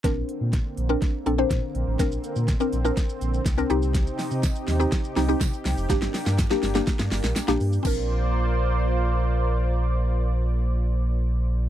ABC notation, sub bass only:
X:1
M:4/4
L:1/16
Q:1/4=123
K:Bb
V:1 name="Sub bass" clef=bass
B,,,2 z B,,2 z B,,,2 z2 B,,,2 B,, z B,,, A,,, | B,,,2 z B,,2 z B,,,2 z2 B,,,2 C,,2 C,,2- | C,,2 z C,2 z E,,2 z2 C,,2 C, z C,, F,,, | G,,,2 z G,,2 z G,,,2 z G,, G,,, B,,, B,,, B,,, G,,2 |
B,,,16- | B,,,16 |]